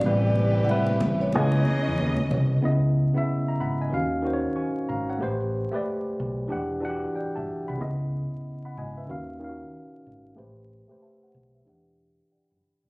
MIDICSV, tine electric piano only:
0, 0, Header, 1, 2, 480
1, 0, Start_track
1, 0, Tempo, 645161
1, 29, Time_signature, 4, 2, 24, 8
1, 9595, End_track
2, 0, Start_track
2, 0, Title_t, "Tine electric piano"
2, 0, Program_c, 0, 4
2, 0, Control_c, 0, 64, 127
2, 17, Note_on_c, 0, 45, 75
2, 24, Note_on_c, 0, 55, 77
2, 40, Control_c, 0, 64, 0
2, 40, Note_on_c, 0, 59, 54
2, 46, Note_on_c, 0, 71, 83
2, 86, Note_on_c, 0, 60, 73
2, 95, Note_off_c, 0, 59, 0
2, 155, Control_c, 0, 64, 127
2, 427, Note_off_c, 0, 45, 0
2, 430, Note_off_c, 0, 55, 0
2, 441, Note_off_c, 0, 71, 0
2, 461, Note_off_c, 0, 60, 0
2, 497, Note_on_c, 0, 45, 82
2, 509, Note_on_c, 0, 55, 70
2, 518, Note_on_c, 0, 60, 71
2, 529, Note_on_c, 0, 71, 94
2, 981, Note_on_c, 0, 49, 75
2, 983, Note_off_c, 0, 45, 0
2, 989, Note_off_c, 0, 55, 0
2, 993, Note_off_c, 0, 60, 0
2, 994, Note_on_c, 0, 59, 64
2, 997, Control_c, 0, 64, 0
2, 999, Note_off_c, 0, 71, 0
2, 999, Note_on_c, 0, 64, 68
2, 1014, Note_on_c, 0, 75, 82
2, 1119, Control_c, 0, 64, 127
2, 1765, Note_off_c, 0, 49, 0
2, 1771, Note_off_c, 0, 59, 0
2, 1774, Note_off_c, 0, 64, 0
2, 1781, Note_off_c, 0, 75, 0
2, 1941, Note_on_c, 0, 49, 79
2, 1951, Note_on_c, 0, 59, 73
2, 1956, Control_c, 0, 64, 0
2, 1961, Note_on_c, 0, 64, 73
2, 1973, Note_on_c, 0, 75, 86
2, 2094, Control_c, 0, 64, 127
2, 2240, Note_off_c, 0, 49, 0
2, 2245, Note_off_c, 0, 59, 0
2, 2250, Note_off_c, 0, 64, 0
2, 2256, Note_off_c, 0, 75, 0
2, 2333, Note_on_c, 0, 49, 76
2, 2341, Note_on_c, 0, 59, 69
2, 2355, Note_on_c, 0, 64, 68
2, 2363, Note_on_c, 0, 76, 90
2, 2441, Note_off_c, 0, 76, 0
2, 2592, Note_on_c, 0, 82, 61
2, 2601, Note_on_c, 0, 76, 46
2, 2672, Note_off_c, 0, 82, 0
2, 2676, Note_off_c, 0, 76, 0
2, 2681, Note_on_c, 0, 83, 65
2, 2686, Note_on_c, 0, 78, 53
2, 2817, Note_off_c, 0, 83, 0
2, 2820, Note_off_c, 0, 78, 0
2, 2838, Note_on_c, 0, 80, 55
2, 2839, Note_on_c, 0, 75, 45
2, 2898, Note_on_c, 0, 51, 73
2, 2906, Note_off_c, 0, 49, 0
2, 2910, Note_off_c, 0, 59, 0
2, 2913, Note_on_c, 0, 61, 73
2, 2917, Note_off_c, 0, 64, 0
2, 2919, Control_c, 0, 64, 0
2, 2921, Note_on_c, 0, 66, 71
2, 2930, Note_on_c, 0, 77, 88
2, 3056, Note_off_c, 0, 80, 0
2, 3056, Control_c, 0, 64, 127
2, 3057, Note_off_c, 0, 75, 0
2, 3107, Note_off_c, 0, 51, 0
2, 3115, Note_off_c, 0, 61, 0
2, 3119, Note_off_c, 0, 66, 0
2, 3123, Note_off_c, 0, 77, 0
2, 3142, Note_on_c, 0, 51, 79
2, 3153, Note_on_c, 0, 61, 72
2, 3161, Note_on_c, 0, 66, 74
2, 3176, Note_on_c, 0, 72, 74
2, 3223, Note_off_c, 0, 72, 0
2, 3224, Note_on_c, 0, 73, 85
2, 3391, Note_on_c, 0, 85, 58
2, 3396, Note_on_c, 0, 80, 53
2, 3427, Note_off_c, 0, 73, 0
2, 3618, Note_off_c, 0, 85, 0
2, 3621, Note_off_c, 0, 80, 0
2, 3636, Note_on_c, 0, 82, 59
2, 3640, Note_on_c, 0, 77, 52
2, 3735, Note_off_c, 0, 51, 0
2, 3741, Note_off_c, 0, 61, 0
2, 3745, Note_off_c, 0, 66, 0
2, 3775, Note_off_c, 0, 82, 0
2, 3777, Note_off_c, 0, 77, 0
2, 3791, Note_on_c, 0, 78, 58
2, 3796, Note_on_c, 0, 73, 48
2, 3858, Note_on_c, 0, 57, 74
2, 3874, Note_on_c, 0, 67, 73
2, 3879, Control_c, 0, 64, 0
2, 3885, Note_on_c, 0, 71, 76
2, 3891, Note_on_c, 0, 72, 93
2, 4013, Note_off_c, 0, 78, 0
2, 4016, Note_off_c, 0, 73, 0
2, 4025, Control_c, 0, 64, 127
2, 4158, Note_off_c, 0, 57, 0
2, 4166, Note_off_c, 0, 67, 0
2, 4172, Note_off_c, 0, 71, 0
2, 4175, Note_off_c, 0, 72, 0
2, 4251, Note_on_c, 0, 57, 78
2, 4261, Note_on_c, 0, 67, 70
2, 4272, Note_on_c, 0, 71, 69
2, 4283, Note_on_c, 0, 74, 87
2, 4818, Note_on_c, 0, 52, 76
2, 4825, Note_off_c, 0, 57, 0
2, 4828, Note_on_c, 0, 62, 73
2, 4830, Note_off_c, 0, 67, 0
2, 4835, Note_off_c, 0, 71, 0
2, 4838, Note_on_c, 0, 67, 71
2, 4840, Control_c, 0, 64, 0
2, 4841, Note_off_c, 0, 74, 0
2, 4851, Note_on_c, 0, 78, 76
2, 4953, Control_c, 0, 64, 127
2, 5027, Note_off_c, 0, 52, 0
2, 5032, Note_off_c, 0, 62, 0
2, 5037, Note_off_c, 0, 67, 0
2, 5044, Note_off_c, 0, 78, 0
2, 5061, Note_on_c, 0, 52, 83
2, 5072, Note_on_c, 0, 62, 70
2, 5082, Note_on_c, 0, 66, 62
2, 5095, Note_on_c, 0, 78, 92
2, 5131, Note_on_c, 0, 67, 76
2, 5135, Note_off_c, 0, 66, 0
2, 5322, Note_off_c, 0, 78, 0
2, 5324, Note_on_c, 0, 79, 59
2, 5329, Note_on_c, 0, 74, 52
2, 5459, Note_off_c, 0, 79, 0
2, 5461, Note_off_c, 0, 74, 0
2, 5473, Note_on_c, 0, 81, 60
2, 5479, Note_on_c, 0, 76, 49
2, 5655, Note_off_c, 0, 52, 0
2, 5660, Note_off_c, 0, 62, 0
2, 5689, Note_off_c, 0, 67, 0
2, 5694, Note_off_c, 0, 81, 0
2, 5697, Note_off_c, 0, 76, 0
2, 5714, Note_on_c, 0, 83, 60
2, 5716, Note_on_c, 0, 78, 45
2, 5784, Note_on_c, 0, 49, 86
2, 5796, Note_on_c, 0, 59, 71
2, 5797, Control_c, 0, 64, 0
2, 5804, Note_on_c, 0, 64, 68
2, 5815, Note_on_c, 0, 75, 82
2, 5935, Note_off_c, 0, 83, 0
2, 5936, Note_off_c, 0, 78, 0
2, 5945, Control_c, 0, 64, 127
2, 6042, Note_off_c, 0, 75, 0
2, 6081, Note_off_c, 0, 49, 0
2, 6087, Note_off_c, 0, 59, 0
2, 6091, Note_off_c, 0, 64, 0
2, 6437, Note_on_c, 0, 83, 50
2, 6442, Note_on_c, 0, 78, 44
2, 6514, Note_off_c, 0, 83, 0
2, 6517, Note_off_c, 0, 78, 0
2, 6534, Note_on_c, 0, 80, 62
2, 6539, Note_on_c, 0, 75, 54
2, 6664, Note_off_c, 0, 80, 0
2, 6667, Note_off_c, 0, 75, 0
2, 6677, Note_on_c, 0, 76, 54
2, 6678, Note_on_c, 0, 71, 45
2, 6747, Note_on_c, 0, 51, 77
2, 6756, Note_on_c, 0, 61, 64
2, 6758, Control_c, 0, 64, 0
2, 6766, Note_on_c, 0, 66, 67
2, 6777, Note_on_c, 0, 77, 79
2, 6896, Note_off_c, 0, 76, 0
2, 6897, Note_off_c, 0, 71, 0
2, 6909, Control_c, 0, 64, 127
2, 6952, Note_off_c, 0, 51, 0
2, 6956, Note_off_c, 0, 61, 0
2, 6961, Note_off_c, 0, 66, 0
2, 6967, Note_off_c, 0, 77, 0
2, 6991, Note_on_c, 0, 51, 81
2, 7002, Note_on_c, 0, 61, 68
2, 7016, Note_on_c, 0, 65, 58
2, 7024, Note_on_c, 0, 77, 77
2, 7061, Note_on_c, 0, 66, 65
2, 7063, Note_off_c, 0, 65, 0
2, 7580, Note_off_c, 0, 51, 0
2, 7585, Note_off_c, 0, 61, 0
2, 7596, Note_off_c, 0, 77, 0
2, 7615, Note_off_c, 0, 66, 0
2, 7704, Note_on_c, 0, 57, 75
2, 7712, Note_on_c, 0, 67, 69
2, 7717, Control_c, 0, 64, 0
2, 7722, Note_on_c, 0, 71, 73
2, 7732, Note_on_c, 0, 72, 80
2, 7840, Control_c, 0, 64, 127
2, 8001, Note_off_c, 0, 57, 0
2, 8005, Note_off_c, 0, 67, 0
2, 8010, Note_off_c, 0, 71, 0
2, 8015, Note_off_c, 0, 72, 0
2, 8093, Note_on_c, 0, 57, 70
2, 8103, Note_on_c, 0, 67, 64
2, 8116, Note_on_c, 0, 71, 67
2, 8122, Note_on_c, 0, 72, 81
2, 8198, Note_off_c, 0, 71, 0
2, 8199, Note_on_c, 0, 81, 58
2, 8201, Note_off_c, 0, 72, 0
2, 8203, Note_on_c, 0, 76, 49
2, 8336, Note_off_c, 0, 81, 0
2, 8338, Note_off_c, 0, 76, 0
2, 8357, Note_on_c, 0, 78, 56
2, 8362, Note_on_c, 0, 72, 47
2, 8576, Note_off_c, 0, 78, 0
2, 8579, Note_off_c, 0, 72, 0
2, 8589, Note_on_c, 0, 76, 48
2, 8594, Note_on_c, 0, 71, 41
2, 8664, Note_on_c, 0, 52, 70
2, 8666, Note_off_c, 0, 57, 0
2, 8671, Note_off_c, 0, 67, 0
2, 8676, Note_on_c, 0, 62, 67
2, 8678, Control_c, 0, 64, 0
2, 8686, Note_on_c, 0, 67, 62
2, 8699, Note_on_c, 0, 78, 75
2, 8790, Control_c, 0, 64, 127
2, 8812, Note_off_c, 0, 76, 0
2, 8815, Note_off_c, 0, 71, 0
2, 8870, Note_off_c, 0, 52, 0
2, 8876, Note_off_c, 0, 62, 0
2, 8881, Note_off_c, 0, 67, 0
2, 8888, Note_off_c, 0, 78, 0
2, 9162, Note_on_c, 0, 78, 59
2, 9162, Note_on_c, 0, 79, 54
2, 9167, Note_on_c, 0, 74, 43
2, 9298, Note_off_c, 0, 79, 0
2, 9300, Note_off_c, 0, 74, 0
2, 9300, Note_off_c, 0, 78, 0
2, 9301, Note_on_c, 0, 83, 48
2, 9390, Note_off_c, 0, 83, 0
2, 9399, Note_on_c, 0, 83, 54
2, 9546, Note_on_c, 0, 79, 54
2, 9548, Note_on_c, 0, 74, 39
2, 9595, Note_off_c, 0, 74, 0
2, 9595, Note_off_c, 0, 79, 0
2, 9595, Note_off_c, 0, 83, 0
2, 9595, End_track
0, 0, End_of_file